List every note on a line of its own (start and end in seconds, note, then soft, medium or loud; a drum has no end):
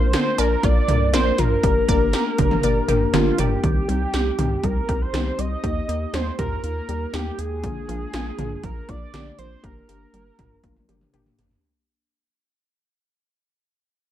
0.00 0.15 A#1 loud
0.00 0.10 A#3 loud
0.00 0.10 D4 loud
0.00 0.10 F4 medium
0.00 0.10 A#4 loud
0.00 0.13 C5 loud
0.13 0.31 D3 medium
0.13 0.35 A#3 medium
0.13 0.35 D4 medium
0.13 0.35 F4 medium
0.13 0.35 C5 medium
0.13 0.40 C5 loud
0.13 snare loud
0.13 closed hi-hat medium
0.38 0.56 A#1 loud
0.38 0.60 A#3 medium
0.38 0.60 D4 medium
0.38 0.60 F4 medium
0.38 0.60 A#4 medium
0.38 0.65 A#4 loud
0.38 0.56 D5 loud
0.38 closed hi-hat medium
0.38 cowbell medium
0.63 0.81 A#1 loud
0.63 0.85 A#3 medium
0.63 0.85 D4 medium
0.63 0.85 F4 medium
0.63 0.81 F4 medium
0.63 0.85 A#4 medium
0.63 1.13 D5 loud
0.63 kick loud
0.63 closed hi-hat medium
0.88 1.15 C2 loud
0.88 1.06 D3 medium
0.88 1.10 A#3 medium
0.88 1.10 D4 medium
0.88 1.10 F4 medium
0.88 1.10 A#4 medium
0.88 closed hi-hat medium
0.88 mid tom medium
1.13 1.31 A#1 loud
1.13 1.35 A#3 loud
1.13 1.35 D4 medium
1.13 1.35 F4 loud
1.13 1.35 A#4 loud
1.13 1.40 C5 loud
1.13 1.31 D5 loud
1.13 snare loud
1.13 closed hi-hat medium
1.38 1.56 A#1 loud
1.38 1.60 A#3 medium
1.38 1.60 D4 medium
1.38 1.56 F4 medium
1.38 1.60 F4 medium
1.38 1.60 A#4 medium
1.38 3.13 A#4 loud
1.38 closed hi-hat medium
1.38 mid tom loud
1.63 1.81 G1 loud
1.63 1.81 D3 medium
1.63 1.85 A#3 loud
1.63 1.85 D4 medium
1.63 1.85 G4 medium
1.63 1.85 A#4 loud
1.63 kick loud
1.63 closed hi-hat medium
1.88 2.15 G1 loud
1.88 2.10 A#3 loud
1.88 2.10 D4 medium
1.88 2.10 G4 medium
1.88 2.10 A#4 loud
1.88 2.06 D5 loud
1.88 kick medium
1.88 closed hi-hat medium
2.13 2.35 A#3 medium
2.13 2.35 D4 medium
2.13 2.35 G4 medium
2.13 2.31 G4 medium
2.13 2.35 A#4 loud
2.13 snare loud
2.13 closed hi-hat medium
2.38 2.56 G1 loud
2.38 2.56 D3 medium
2.38 2.60 A#3 loud
2.38 2.60 D4 medium
2.38 2.60 G4 medium
2.38 2.60 A#4 loud
2.38 kick medium
2.38 closed hi-hat medium
2.51 mid tom loud
2.63 2.81 G1 loud
2.63 2.85 A#3 loud
2.63 2.85 D4 medium
2.63 2.85 G4 medium
2.63 2.85 A#4 loud
2.63 2.81 D5 loud
2.63 closed hi-hat medium
2.88 3.06 G#1 medium
2.88 3.10 A#3 medium
2.88 3.10 D4 medium
2.88 3.10 G4 medium
2.88 3.06 G4 medium
2.88 3.10 A#4 loud
2.88 closed hi-hat medium
2.88 mid tom medium
3.13 3.31 G1 loud
3.13 3.31 D3 medium
3.13 3.35 A#3 loud
3.13 3.35 D4 loud
3.13 3.40 F4 loud
3.13 3.35 G4 loud
3.13 3.35 A#4 loud
3.13 snare loud
3.13 closed hi-hat medium
3.38 3.56 G1 loud
3.38 3.60 A#3 loud
3.38 3.60 D4 medium
3.38 3.60 G4 medium
3.38 4.65 G4 loud
3.38 3.60 A#4 loud
3.38 3.56 D5 loud
3.38 closed hi-hat medium
3.38 mid tom loud
3.64 3.81 C2 loud
3.64 3.81 D#3 medium
3.64 3.85 C4 medium
3.64 3.85 D#4 medium
3.64 3.85 G4 loud
3.64 kick loud
3.64 closed hi-hat medium
3.88 4.06 C2 loud
3.88 4.06 G3 medium
3.88 4.10 C4 loud
3.88 4.10 D#4 medium
3.88 4.10 G4 loud
3.88 closed hi-hat medium
4.13 4.31 C2 loud
4.13 4.35 C4 medium
4.13 4.35 D#4 medium
4.13 4.35 G4 loud
4.13 4.31 G4 medium
4.13 snare loud
4.13 closed hi-hat medium
4.39 4.56 C2 medium
4.39 4.56 D#3 medium
4.39 4.60 C4 medium
4.39 4.60 D#4 medium
4.39 4.60 G4 loud
4.39 closed hi-hat medium
4.39 mid tom loud
4.64 4.81 C2 loud
4.64 4.81 G3 medium
4.64 4.85 C4 medium
4.64 4.85 D#4 medium
4.64 4.85 G4 medium
4.64 5.03 A#4 loud
4.64 kick medium
4.64 closed hi-hat medium
4.88 5.06 C2 loud
4.88 5.10 C4 medium
4.88 5.10 D#4 medium
4.88 5.06 G4 medium
4.88 5.10 G4 medium
4.88 kick medium
4.88 closed hi-hat medium
5.02 5.41 C5 loud
5.13 5.31 C2 loud
5.13 5.31 D#3 medium
5.13 5.35 C4 loud
5.13 5.35 D#4 medium
5.13 5.35 G4 loud
5.13 snare loud
5.13 closed hi-hat medium
5.38 5.56 C2 loud
5.38 5.56 G3 medium
5.38 5.60 C4 medium
5.38 5.60 D#4 medium
5.38 5.60 G4 medium
5.38 6.15 D#5 loud
5.38 closed hi-hat medium
5.64 5.81 D#2 loud
5.64 5.85 A#3 medium
5.64 5.85 D#4 medium
5.64 5.81 G4 medium
5.64 5.85 G4 loud
5.64 kick loud
5.64 closed hi-hat medium
5.88 6.06 D#2 loud
5.88 6.10 A#3 loud
5.88 6.10 D#4 medium
5.88 6.10 G4 loud
5.88 closed hi-hat medium
6.13 6.31 D#2 loud
6.13 6.31 G3 medium
6.13 6.35 A#3 medium
6.13 6.35 D#4 medium
6.13 6.35 G4 medium
6.13 6.38 C5 loud
6.13 snare loud
6.13 closed hi-hat medium
6.39 6.56 D#2 loud
6.39 6.60 A#3 medium
6.39 6.60 D#4 medium
6.39 6.60 F4 medium
6.39 6.56 G4 medium
6.39 6.62 A#4 loud
6.39 kick medium
6.39 closed hi-hat medium
6.39 mid tom loud
6.64 6.81 D#2 loud
6.64 6.85 A#3 medium
6.64 6.85 D#4 medium
6.64 6.85 F4 medium
6.64 7.16 A#4 loud
6.64 closed hi-hat medium
6.89 7.06 D#2 loud
6.89 7.06 G3 medium
6.89 7.10 A#3 medium
6.89 7.10 D#4 medium
6.89 7.10 G4 medium
6.89 closed hi-hat medium
7.13 7.31 D#2 loud
7.13 7.35 A#3 loud
7.13 7.35 D#4 medium
7.13 7.31 G4 medium
7.13 7.35 G4 loud
7.13 7.40 G4 medium
7.13 snare loud
7.13 closed hi-hat medium
7.39 7.65 D#2 loud
7.39 7.60 A#3 medium
7.39 7.60 D#4 medium
7.39 7.60 G4 medium
7.39 8.65 G#4 loud
7.39 closed hi-hat medium
7.63 7.81 A#1 loud
7.63 7.81 D3 medium
7.63 7.85 A#3 medium
7.63 7.85 D4 medium
7.63 7.85 F4 loud
7.63 kick loud
7.63 closed hi-hat medium
7.89 8.06 A#1 loud
7.89 8.06 F3 medium
7.89 8.10 A#3 medium
7.89 8.10 D4 medium
7.89 8.10 F4 loud
7.89 closed hi-hat medium
8.14 8.31 A#1 loud
8.14 8.35 A#3 medium
8.14 8.35 D4 medium
8.14 8.31 F4 medium
8.14 8.35 F4 medium
8.14 snare loud
8.14 closed hi-hat medium
8.38 8.56 A#1 loud
8.38 8.56 D3 medium
8.38 8.60 A#3 medium
8.38 8.60 D4 medium
8.38 8.60 F4 loud
8.38 closed hi-hat medium
8.38 mid tom loud
8.64 8.81 A#1 loud
8.64 8.81 F3 medium
8.64 8.85 A#3 medium
8.64 8.85 D4 medium
8.64 8.85 F4 medium
8.64 8.90 A#4 loud
8.64 kick medium
8.64 closed hi-hat medium
8.89 9.06 A#1 medium
8.89 9.10 A#3 medium
8.89 9.10 D4 medium
8.89 9.06 F4 medium
8.89 9.10 F4 medium
8.89 9.38 D5 loud
8.89 kick medium
8.89 closed hi-hat medium
9.14 9.31 A#1 loud
9.14 9.31 D3 medium
9.14 9.35 A#3 loud
9.14 9.35 D4 medium
9.14 9.35 G4 loud
9.14 snare loud
9.14 closed hi-hat medium
9.39 9.56 A#1 medium
9.39 9.56 F3 medium
9.39 9.60 A#3 medium
9.39 9.60 D4 medium
9.39 9.60 F4 medium
9.39 9.65 C5 medium
9.39 closed hi-hat medium
9.64 9.81 G1 loud
9.64 9.85 A#3 medium
9.64 9.85 D4 medium
9.64 9.81 G4 medium
9.64 9.85 G4 loud
9.64 11.14 A#4 medium
9.64 kick loud
9.64 closed hi-hat medium
9.89 10.06 G1 loud
9.89 10.10 A#3 medium
9.89 10.10 D4 medium
9.89 10.10 G4 loud
9.89 closed hi-hat medium
10.13 10.31 G1 loud
10.13 10.31 G3 medium
10.13 10.35 A#3 medium
10.13 10.35 D4 medium
10.13 10.35 G4 medium
10.13 closed hi-hat medium
10.39 10.56 G1 medium
10.39 10.60 A#3 medium
10.39 10.60 D4 medium
10.39 10.60 F4 loud
10.39 10.56 G4 medium
10.39 kick medium
10.39 closed hi-hat medium
10.39 mid tom loud
10.64 10.81 G1 loud
10.64 10.85 A#3 medium
10.64 10.85 D4 medium
10.64 10.85 F4 loud
10.64 kick medium
10.64 closed hi-hat medium
10.64 high tom medium
10.76 high tom soft
10.89 11.06 G1 loud
10.89 11.06 G3 medium
10.89 11.10 A#3 medium
10.89 11.10 D4 medium
10.89 11.10 G4 loud
10.89 closed hi-hat medium
10.89 mid tom medium
11.01 mid tom medium
11.14 11.31 G1 loud
11.14 11.35 A#3 loud
11.14 11.35 D4 loud
11.14 11.35 G4 loud
11.14 11.31 G4 medium
11.14 closed hi-hat medium
11.14 mid tom medium
11.26 mid tom medium
11.39 11.56 G1 medium
11.39 11.60 A#3 medium
11.39 11.60 D4 medium
11.39 11.60 G4 medium
11.39 closed hi-hat medium
11.39 floor tom medium
11.51 floor tom medium